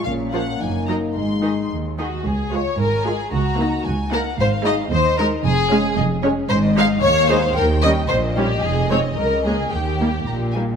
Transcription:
<<
  \new Staff \with { instrumentName = "Violin section" } { \time 2/4 \key des \major \tempo 4 = 112 f''8 ges''8 aes''8 bes''8 | c'''4 r4 | r4 aes''4 | bes''4 aes''8 ges''8 |
f''4 ees''4 | aes''8 f''8 ees''8 des''8 | \key ees \mixolydian ees''4 f''4 | g''4 ees''4~ |
ees''2 | g''4 bes''8 aes''8 | }
  \new Staff \with { instrumentName = "Violin section" } { \time 2/4 \key des \major r8 <bes' des''>8 r8 <bes' ees''>8 | r8 <aes' ees''>8 r8 <ges' aes' ees''>8 | aes'8 des''8 bes'8 aes'8 | ges'4 r8 bes'8 |
c''8 ees''8 c''8 bes'8 | aes'4 r4 | \key ees \mixolydian c''8 f''8 des''8 c''8 | bes'8 ees''8 c''8 g'8 |
aes'8 des''8 bes'8 aes'8 | g'4. r8 | }
  \new Staff \with { instrumentName = "French horn section" } { \time 2/4 \key des \major << { des'4 ees'4~ | ees'4. r8 | r8 f'8 r8 f'8 | r8 ees'8 r8 ees'8 |
r8 ees'8 r8 ees'8 | r8 des'8 r8 des'8 | \key ees \mixolydian r8 ees'8 r8 ees'8 | r8 ees'8 r8 ees'8 |
r8 ees'8 r8 des'8 | r8 ees'8 r8 ees'8 | } \\ { bes2 | aes4. r8 | r8 aes8 r8 aes8 | r8 bes8 r8 bes8 |
r8 aes8 r8 aes8 | r8 aes8 r8 aes8 | r8 aes8 r8 aes8 | r8 g8 r8 g8 |
r8 aes8 r8 aes8 | r8 bes8 r8 bes8 | } >> }
  \new Staff \with { instrumentName = "Viola section" } { \time 2/4 \key des \major r8 <f f'>8 r8 <ges ees'>8 | r8 <ees ees'>8 r8 <ees ees'>8 | r8 <aes f'>8 r8 <aes f'>8 | r8 <bes ees'>8 r8 <bes ees'>8 |
r8 <aes ees'>8 r8 <aes ees'>8 | r8 <aes des'>8 r8 <aes des'>8 | \key ees \mixolydian r8 <aes ees'>8 r8 <aes ees'>8 | r8 <g des'>8 r8 <g des'>8 |
r8 <aes c'>8 r8 <aes bes>8 | r8 <g bes>8 r8 <g bes>8 | }
  \new Staff \with { instrumentName = "Cello section" } { \clef bass \time 2/4 \key des \major bes,4 ges,4 | aes,4 ees,4 | des,4 aes,4 | des,4 des,4 |
aes,4 ees,4 | f,4 f,4 | \key ees \mixolydian aes,4 ees,4 | ees,4 bes,4 |
f,4 des,4 | ees,4 bes,4 | }
  \new Staff \with { instrumentName = "Double bass section" } { \clef bass \time 2/4 \key des \major bes,,4 ges,,4 | aes,,4 r4 | des,4 aes,,4 | des,4 des,4 |
aes,,4 ees,4 | f,,4 f,,4 | \key ees \mixolydian aes,,4 ees,4 | ees,4 bes,,4 |
f,,4 des,4 | ees,4 bes,,4 | }
>>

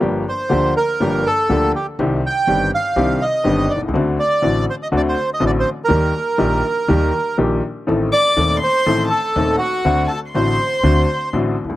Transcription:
<<
  \new Staff \with { instrumentName = "Violin" } { \time 4/4 \key d \phrygian \tempo 4 = 122 r1 | r1 | r1 | r1 |
r8 d'''4 c'''4 a''4 fis''8~ | fis''8 a''8 c'''2 r4 | }
  \new Staff \with { instrumentName = "Bandoneon" } { \time 4/4 \key d \phrygian r8 c''4 bes'4 a'4 g'8 | r8 g''4 f''4 ees''4 d''8 | r8 d''4 c''16 ees''16 d''16 c''8 ees''16 d''16 c''8 bes'16~ | bes'2. r4 |
r8 d''4 c''4 a'4 fis'8~ | fis'8 a'8 c''2 r4 | }
  \new Staff \with { instrumentName = "Upright piano" } { \clef bass \time 4/4 \key d \phrygian <g,, g, f bes d' g'>8 r8 <d, d f bes d' g'>8 r8 <g,, g, f bes d' g'>8 r8 <d, d f bes d' g'>8 r8 | <c, c ees c' d' g'>8 r8 <g,, g, ees c' d' g'>8 r8 <c, c ees c' d' g'>8 r8 <g,, g, ees c' d' g'>8 r32 b,,32 c,32 cis,32 | <d, d a c' fis'>8 r8 <a,, a, d a c' fis'>8 r8 <d, d a c' fis'>8 r8 <a,, a, d a c' fis'>8 r8 | <ees, ees g bes g'>8 r8 <bes,, bes, ees g bes g'>8 r8 <ees, ees g bes g'>8 r8 <bes,, bes, ees g bes g'>8 r8 |
<a,, a, ees a c' a'>8 r8 <ees,, ees, ees a c' a'>8 r8 <a,, a, ees a c' a'>8 r8 <ees,, ees, ees a c' a'>8 r8 | <d, d a c' fis'>8 r8 <a,, a, d a c' fis'>8 r8 <d, d a c' fis'>8 r8 <a,, a, d a c' fis'>8 r32 c,32 cis,32 r32 | }
  \new Staff \with { instrumentName = "Upright bass" } { \clef bass \time 4/4 \key d \phrygian g,,16. r8 r32 d,16. r8 r32 g,,16. r8 r32 d,16. r8 r32 | c,16. r8 r32 g,,16. r8 r32 c,16. r8 r32 g,,16. r16 b,,32 c,32 cis,32 | d,16. r8 r32 a,,16. r8 r32 d,16. r8 r32 a,,16. r8 r32 | ees,16. r8 r32 bes,,16. r8 r32 ees,16. r8 r32 bes,,16. r8 r32 |
a,,16. r8 r32 ees,16. r8 r32 a,,16. r8 r32 ees,16. r8 r32 | d,16. r8 r32 a,,16. r8 r32 d,16. r8 r32 a,,16. r16 c,32 cis,32 r32 | }
>>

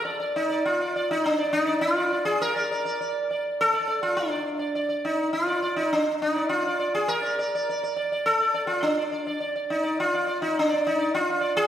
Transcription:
\new Staff \with { instrumentName = "Sitar" } { \time 4/4 \tempo 4 = 103 << { d''16 d''8 d''8 d''16 d''8 r16 d''8 d''8 d''16 d''8 | r16 d''16 d''16 d''16 d''8 d''8 r16 d''16 d''8 r16 d''8 d''16 | d''16 d''8 r8 d''16 d''8 r8. d''8 d''16 d''8 | r16 d''16 d''16 d''16 d''16 d''16 d''16 d''8 d''16 d''8 r16 d''16 d''16 d''16 |
d''16 d''8 d''8 d''16 d''8 r16 d''8 d''8 r16 d''8 | } \\ { r8 ees'8 f'8. ees'16 d'8 ees'8 f'8. gis'16 | bes'4. r8 a'8. f'16 d'4 | r8 ees'8 f'8. ees'16 d'8 ees'8 f'8. gis'16 | bes'4. r8 a'8. f'16 d'4 |
r8 ees'8 f'8. ees'16 d'8 ees'8 f'8. gis'16 | } >> }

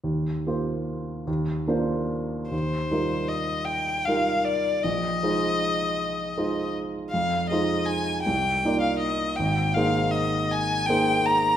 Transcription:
<<
  \new Staff \with { instrumentName = "Violin" } { \time 6/8 \key ees \major \tempo 4. = 52 r2. | c''4 ees''8 g''8 f''8 d''8 | ees''2~ ees''8 r8 | f''8 ees''8 aes''8 g''8. f''16 ees''8 |
g''8 f''8 ees''8 aes''8 g''8 bes''8 | }
  \new Staff \with { instrumentName = "Grand piano" } { \time 6/8 \key ees \major ees,8 <bes f' g' c''>4 ees,8 <bes d' f' c''>4 | ees,8 <g ees' f' bes'>4. <g ees' f' bes'>4 | bes,,8 <aes ees' f' c''>4. <aes ees' f' c''>4 | f,8 <aes ees' f' c''>4 c,8 <bes ees' f' d''>4 |
aes,,8 <bes ees' aes' c''>4. <bes ees' aes' c''>4 | }
>>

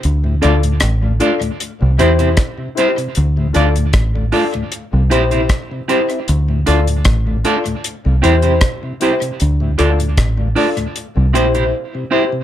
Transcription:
<<
  \new Staff \with { instrumentName = "Upright piano" } { \time 4/4 \key d \minor \tempo 4 = 77 r8 <f' a' d''>16 r8 <a' d''>16 <f' a' d''>16 r8. <e' g' c''>16 <e' g'>16 r8 <e' g' c''>16 r16 | r8 <f' a' d''>16 r8 <a' d''>16 <f' a' d''>16 r8. <e' g' c''>16 <e' g' c''>16 r16 <g' c''>16 <e' g' c''>16 r16 | r8 <f' a' d''>16 r8 <a' d''>16 <f' a' d''>16 r8. <e' g' c''>16 <e' g' c''>16 r8 <e' g' c''>16 r16 | r8 <f' a' d''>16 r8 <a' d''>16 <f' a' d''>16 r8. <e' g' c''>16 <e' g' c''>16 r16 <g' c''>16 <e' g' c''>16 r16 | }
  \new Staff \with { instrumentName = "Clean electric guitar" } { \time 4/4 \key d \minor r8 <d' f' a' d''>16 r8. <d' f' a' d''>16 r8. <c' e' g' c''>16 <c' e' g' c''>16 r8 <c' e' g' c''>16 r16 | r8 <d' f' a' d''>16 r8. <d' f' a' d''>16 r8. <c' e' g' c''>16 <c' e' g' c''>16 r8 <c' e' g' c''>16 r16 | r8 <d' f' a' d''>16 r8. <d' f' a' d''>16 r8. <c' e' g' c''>16 <c' e' g' c''>16 r8 <c' e' g' c''>16 r16 | r8 <d' f' a' d''>16 r8. <d' f' a' d''>16 r8. <c' e' g' c''>16 <c' e' g' c''>16 r8 <c' e' g' c''>16 r16 | }
  \new Staff \with { instrumentName = "Tonewheel organ" } { \clef bass \time 4/4 \key d \minor r16 <d, a,>16 <a d' f'>16 <d, a,>16 r16 <d, a,>16 <a d' f'>16 <d, a,>16 r16 c16 <g c' e'>16 c16 r16 c16 <g c' e'>16 c16 | r16 <d, a,>16 <a d' f'>16 <d, a,>16 r16 <d, a,>16 <a d' f'>16 <d, a,>16 r16 c16 <g c' e'>16 c16 r16 c16 <g c' e'>16 <c' e'>16 | r16 <d, a,>16 <a d' f'>16 <d, a,>16 r16 <d, a,>16 <a d' f'>16 <d, a,>16 r16 c16 <g c' e'>16 c16 r16 c16 <g c' e'>16 c16 | r16 <d, a,>16 <a d' f'>16 <d, a,>16 r16 <d, a,>16 <a d' f'>16 <d, a,>16 r16 c16 <g c' e'>16 c16 r16 c16 <g c' e'>16 c16 | }
  \new Staff \with { instrumentName = "Fingered electric bass" } { \clef bass \time 4/4 \key d \minor d,8 d,8 a,,8 r8. c,16 e,8 r4 | d,8 d,8 a,,8 r8. c,16 bes,,8 r4 | d,8 d,8 a,,8 r8. c,16 e,8 r4 | d,8 d,8 a,,8 r8. c,16 bes,,8 r4 | }
  \new DrumStaff \with { instrumentName = "Drums" } \drummode { \time 4/4 hh8 hh16 hh16 <hh ss>8 hh16 hh16 hh8 hh16 hh16 <hh bd ss>8 hh16 hh16 | hh8 hh16 hh16 <hh bd ss>8 hho16 hh16 hh8 hh16 hh16 <hh bd ss>8 hh16 hh16 | hh8 hh16 hh16 <hh bd ss>8 hh16 hh16 hh8 hh16 hh16 <hh bd ss>8 hh16 hh16 | hh8 hh16 hh16 <hh bd ss>8 hho16 hh16 hh8 hh16 hh16 r4 | }
>>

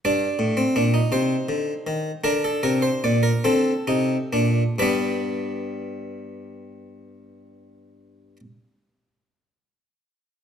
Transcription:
<<
  \new Staff \with { instrumentName = "Harpsichord" } { \time 6/8 \key d \phrygian \tempo 4. = 42 << { d''4. c''4. | bes'16 a'16 bes'16 c''16 d''16 bes'16 a'4. | <g b b'>2.~ | <g b b'>2. | } \\ { d'8. c'16 d'16 ees'4.~ ees'16 | d'4. c'8 ees'8 d'8 | d'2.~ | d'2. | } >> }
  \new Staff \with { instrumentName = "Harpsichord" } { \clef bass \time 6/8 \key d \phrygian g,8 a,8 bes,8 c8 d8 ees8 | d8 c8 bes,8 d8 c8 bes,8 | g,2.~ | g,2. | }
>>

